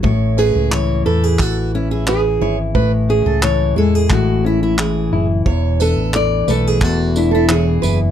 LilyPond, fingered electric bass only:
\new Staff \with { instrumentName = "Fingered electric bass" } { \clef bass \time 4/4 \key a \major \tempo 4 = 89 a,,8. cis,8. e,8 a,,4. gis,,8 | a,,8. cis,8. e,8 a,,4. fis,,8 | e,,8. a,,8. b,,8 e,,4. fis,,8 | }